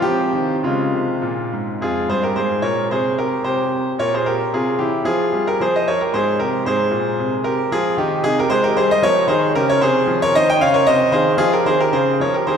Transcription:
0.02 F3 C4 G4
0.33 D#3
0.63 C#3 G#3 C4 F4
0.93 C3
1.22 A#2
1.53 G#2
1.81 F2 F4 G#4
2.09 G2 G#4 C5
2.23 G4 A#4
2.36 G#2 G#4 C5
2.62 A#2 A#4 C#5
2.89 C3 G#4 C5
3.18 G4 A#4
3.44 C3 G4 C5
3.99 A#2 A#4 C#5
4.14 G#4 C5
4.26 G4 A#4
4.53 C3 F4 G#4
4.79 E3 E4 G4
5.04 F3 F4 G#4
5.33 G3
5.47 G4 A#4
5.60 F3 G#4 C5
5.76 C5 D#5
5.88 A#4 C#5
6.01 G4 A#4
6.13 G#2 G#4 C5
6.39 C3 G4 A#4
6.65 G#2 G#4 C5
6.91 A#2
7.19 C3
7.44 G4 A#4
7.72 F3 F4 G#4
7.97 D#3 D#4 G4
8.23 C3 D#4 G#4
8.39 G4 A#4
8.49 G#3 G#4 C5
8.64 G4 A#4
8.76 G3 G#4 C5
8.91 C5 D#5
9.02 F3 A#4 C#5
9.27 D#3 G#4 C5
9.55 C#3 G4 A#4
9.69 A#4 C#5
9.81 C3 G#4 C5
10.07 F3
10.22 A#4 C#5
10.34 D#3 C5 D#5
10.50 D#5 G5
10.60 C#3 C#5 F5
10.74 A#4 C#5
10.86 C3 C5 D#5
11.11 D#3 G#4 C5
11.37 F3 F4 G#4
11.53 G4 A#4
11.65 D#3 G#4 C5
11.80 G4 A#4
11.92 C#3 G#4 C5
12.20 F3 A#4 C#5
12.34 G4 A#4
12.46 D#3 G#4 C5

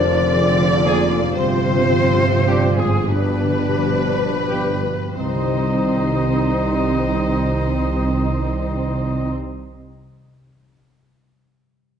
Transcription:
Already playing: F1 F2 D3 C4 D4 F4 A#4 C5 D5
0.10 C3
0.33 F3 C4 G#4
0.59 F4
0.84 F3 A#3 C4 F4 G#4
1.11 F4
1.36 G1 G2 C3 C4 F4 C5
1.65 D3
1.92 F3
2.20 D4
2.47 F3 D4 G4
2.78 G#2 F4 G#4
3.08 G2 B2 D4 G4 B4
3.42 D3
3.76 F3
4.11 D4
4.48 F3 D4 G4
4.85 F4
5.17 C2 C3 D#3 G3 C4 D#4 G4 C5 D#5
5.25 G3
5.33 C4
5.39 D#4
5.46 G4
5.53 D#5

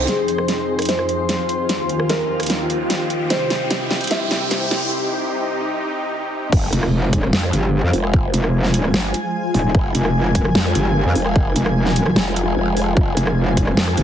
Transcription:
Already playing: D#4 C5
0.08 F2 F3 C4 F4 G#4, snare, closed hi-hat, riser
0.28 closed hi-hat
0.38 cross-stick
0.48 snare, closed hi-hat
0.79 cross-stick, closed hi-hat
0.82 closed hi-hat
0.85 C5, snare, closed hi-hat
0.89 closed hi-hat
0.99 cross-stick
1.09 closed hi-hat
1.29 snare, closed hi-hat
1.49 closed hi-hat
1.69 D#2 D#3 F4 G4, snare, closed hi-hat
1.89 closed hi-hat
2.00 cross-stick
2.09 A#4 D#5, snare, closed hi-hat
2.40 G5, cross-stick, closed hi-hat
2.43 closed hi-hat
2.46 snare, closed hi-hat
2.50 closed hi-hat
2.70 closed hi-hat
2.90 snare, closed hi-hat
3.10 closed hi-hat
3.30 C2 C3 E4 C5, snare, closed hi-hat
3.50 C5, snare, closed hi-hat
3.71 snare, closed hi-hat
3.91 snare
4.01 closed hi-hat
4.04 closed hi-hat
4.07 snare, closed hi-hat
4.11 E5, closed hi-hat
4.31 snare, closed hi-hat
4.51 snare, closed hi-hat
4.71 snare, closed hi-hat
4.91 D#4
6.52 F1 F3 G#3 F4 C5, kick, crash, impact
6.73 F1, closed hi-hat
6.83 cross-stick
7.13 kick, closed hi-hat
7.18 G#5
7.23 cross-stick
7.33 F2, snare
7.43 cross-stick
7.53 G1, closed hi-hat
7.83 F2
7.93 F1, open hi-hat
8.04 cross-stick
8.14 kick
8.34 F1, closed hi-hat
8.44 cross-stick
8.64 snare
8.74 closed hi-hat
8.84 cross-stick
8.94 G1, snare
9.14 closed hi-hat
9.54 D#1, open hi-hat
9.75 F1 A#4, kick
9.95 F1, closed hi-hat
10.05 cross-stick
10.35 kick, closed hi-hat
10.45 cross-stick
10.55 F2, snare
10.65 cross-stick
10.75 G1, closed hi-hat
11.06 F2
11.15 F1, open hi-hat
11.26 cross-stick
11.36 kick
11.56 F1, closed hi-hat
11.66 cross-stick
11.86 snare
11.96 closed hi-hat
12.06 cross-stick
12.16 F1, snare
12.36 closed hi-hat
12.56 F1
12.77 open hi-hat
12.97 F1 C5, kick
13.17 F1, closed hi-hat
13.27 cross-stick
13.57 kick, closed hi-hat
13.63 F5
13.67 cross-stick
13.77 F2, snare
13.87 cross-stick
13.97 G1, closed hi-hat

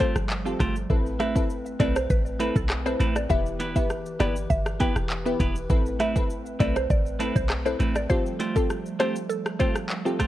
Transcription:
Already playing: A1 F3 G3 A3
0.00 A3 C4 F4 G4 A4 C5, kick, closed hi-hat, shaker
0.16 G1, cross-stick, shaker
0.30 clap, shaker
0.45 C4 F4 G4 A4, muted clean electric guitar stroke, shaker
0.60 G1 A3 F4 G4 C5, kick, cross-stick, closed hi-hat, shaker
0.76 shaker
0.90 A1 C4 E4 A4 B4, kick, shaker
1.06 shaker
1.20 A3 C4 E4 B4 E5, cross-stick, closed hi-hat, shaker
1.36 C4 E4 A4 B4, kick, shaker
1.50 shaker
1.66 shaker
1.80 B1 A3 C4 E4 A4 B4 D5, kick, closed hi-hat, shaker
1.96 C5, cross-stick, shaker
2.10 A1 B4, kick, shaker
2.26 shaker
2.40 A3 C4 E4 A4 B4, closed hi-hat, shaker
2.56 B1 A4, kick, shaker
2.70 cross-stick, clap, shaker
2.86 C4 E4 A4 B4 C5, muted clean electric guitar stroke, shaker
3.00 A1 A3 C4 E4 B4, closed hi-hat, shaker
3.16 D5, cross-stick, shaker
3.30 E1 E3 B3 E4 G4 B4 E5, kick, shaker
3.46 shaker
3.60 B3 E4 G4 B4, closed hi-hat, shaker
3.76 B3 E4 G4 B4 E5, kick, shaker
3.90 cross-stick, shaker
4.06 shaker
4.20 G1 B3 E4 G4 B4 D5, cross-stick, closed hi-hat, shaker
4.36 shaker
4.50 G1 E5, kick, shaker
4.66 cross-stick, shaker
4.80 B3 E4 G4 B4 G5, kick, closed hi-hat, shaker
4.96 E1, cross-stick, shaker
5.10 clap, shaker
5.26 B3 E4 G4 B4, muted clean electric guitar stroke, shaker
5.40 E1 B3 E4 G4 B4, kick, closed hi-hat, shaker
5.56 shaker
5.70 A1 A3 C4 E4 A4 B4, kick, shaker
5.86 shaker
6.00 A3 C4 E4 B4 E5, cross-stick, closed hi-hat, shaker
6.16 C4 E4 A4 B4, kick, shaker
6.30 shaker
6.46 shaker
6.59 B1 A3 C4 E4 A4 B4 D5, kick, closed hi-hat, shaker
6.76 C5, cross-stick, shaker
6.90 A1 D5, kick, shaker
7.06 shaker
7.19 A3 C4 E4 A4 B4, closed hi-hat, shaker
7.36 B1 C5, kick, shaker
7.50 cross-stick, clap, shaker
7.65 C4 E4 A4 B4 C5, muted clean electric guitar stroke, shaker
7.80 A1 A3 C4 E4 B4, closed hi-hat, shaker
7.96 D5, cross-stick, shaker
8.10 F3 G3 A3 C4 F4 G4 A4 C5, kick, shaker
8.26 shaker
8.39 A3 F4 G4 C5, closed hi-hat, shaker
8.56 C4 F4 G4 A4, kick, shaker
8.70 cross-stick, shaker
8.86 shaker
8.99 A3 C4 F4 G4 A4 C5, cross-stick, closed hi-hat, shaker
9.16 shaker
9.29 A4, shaker
9.46 cross-stick, shaker
9.59 A3 C4 F4 G4 A4 C5, kick, closed hi-hat, shaker
9.75 cross-stick, shaker
9.90 clap, shaker
10.05 C4 F4 G4 A4, muted clean electric guitar stroke, shaker
10.19 A3 F4 G4 C5, kick, cross-stick, closed hi-hat, shaker

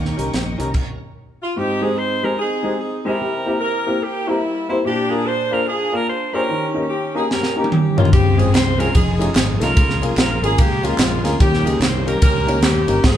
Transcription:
Already playing: D#2 D#3 A#3 C#4 D4 G4 A#4 D5 D#5 F5 G5 A#5 C#6
0.05 snare
0.17 C2 C#4 D#4 G4 A#4, closed hi-hat
0.34 A#1 D#4 C5, snare, closed hi-hat
0.58 C2 C#4 D#4 G4 A#4, closed hi-hat
0.74 kick, crash
1.42 F4
1.56 G#2 C4 D#4 G4
1.81 G#3 C4 D#4 G4 G#4
1.98 C5
2.23 G#3 C4 D#4 G4 G#4 A#4
2.39 C4 D#4 G#4
2.63 G#3 C4 D#4 G4 G#4
2.80 G#4
3.05 G#3 C4 D#4 E4 G4 G#4 A#4
3.21 C3
3.46 A#3 C4 E4 G4 A#4
3.61 E4 G4 A#4
3.86 A#3 C4 E4 G4 A#4
4.03 A#3 E4 G4
4.27 G3 A#3 C4 E4 G4 A#4
4.69 A#3 C4 E4 G4 C5
4.85 A#2 D4 G4
5.09 A#3 D4 F4 G#4 A#4
5.26 C5
5.51 A#3 D4 F4 G#4 A#4 C5
5.67 D4 F4 G#4
5.92 A#3 D4 F4 G#4 A#4
6.09 C5
6.33 A#3 C#4 D4 F4 G4 G#4 A#4 C5
6.49 D#3
6.74 A#3 C#4 D#4 G4 A#4
6.89 G4
7.15 A#3 C#4 D#4 G4 G#4 A#4
7.31 C#4 G4 A#4, snare
7.43 snare
7.55 A#3 C#4 D#4 G4 A#4
7.64 high tom
7.72 G4, mid tom
7.97 A#3 C#4 D#4 F4 G4 C#5, floor tom
8.05 floor tom
8.12 C#2 C#3 F3 G#3 C4 F4 G4 G#4, kick, ride, tambourine
8.37 G#1 G#3 C4 C#4 F4 G#4, ride, tambourine
8.54 C2 C5, snare, clap, ride, tambourine
8.78 G#3 C4 C#4 F4 G#4 A#4, ride, tambourine
8.94 F1 F3 A3 C#4 D#4 G#4, kick, ride, tambourine
9.19 A3 C#4 D#4 F4 G#4, ride, tambourine
9.35 G#1 G#4, snare, clap, ride, tambourine
9.60 C2 A3 C#4 D#4 F4 A4 A#4, snare, ride, tambourine
9.76 C#2 C#3 F3 G#3 A#3 C#4 G#4, kick, ride, tambourine
9.90 snare
10.01 C2 A#3 C#4 F4 G#4 A#4, ride, tambourine
10.16 A#1 A#4, snare, clap, ride, tambourine
10.42 G#1 A#3 C#4 F4 G#4 A#4, ride, tambourine
10.58 C#2 A#3 G4, kick, ride, tambourine
10.83 G#3 A#3 C#4 F4 G#4 A#4, ride, tambourine
10.98 A#1, snare, clap, ride, tambourine
11.23 D2 A#3 C#4 F4 G#4 A#4, snare, ride, tambourine
11.39 D#2 D#3 G3 A#3 C#4 G4, kick, ride, tambourine
11.54 snare
11.65 C#2 A#3 C#4 D#4 G4 G#4 A#4, ride, tambourine
11.80 C2 C5, snare, clap, ride, tambourine
12.05 A#3 C#4 D#4 G4 A#4, ride, tambourine
12.22 C#2 C#4 G4 A#4, kick, ride, tambourine
12.47 A#3 C#4 D#4 G4 C#5, ride, tambourine
12.62 D#2 A#3 C#4 G4, snare, clap, ride, tambourine
12.87 G1 A#3 C#4 D#4 G4 A#4, ride, tambourine
13.02 G#1 D#3 F3 G#3 A#3 C4 F4 G#4, kick, snare, crash
13.08 C4

